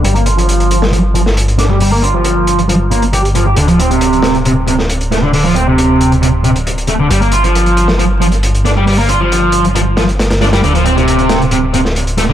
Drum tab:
HH |xxxxxxx-x-x-xxx-|o-x-x-xxx-xxxxx-|xxxxxxxxx-x-xxx-|o-x-x-xxx-xxxxx-|
SD |-------o---o--o-|----------------|------o----o--o-|----------------|

HH |xxxxxxx-x-xxxxx-|o-x-x-xxx-xxxxxx|xxxxxxxxx-x-xxx-|
SD |-------o------o-|----------o-oooo|------o----o--o-|